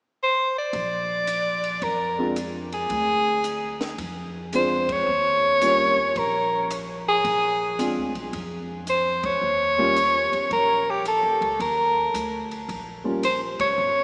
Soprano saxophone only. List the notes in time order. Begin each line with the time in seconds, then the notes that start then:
0.23 C5
0.58 D5
1.83 A#4
2.74 G#4
4.55 C5
4.92 C#5
6.18 A#4
7.08 G#4
8.89 C5
9.25 C#5
10.52 A#4
10.90 G4
11.08 A4
11.61 A#4
13.25 C5
13.61 C#5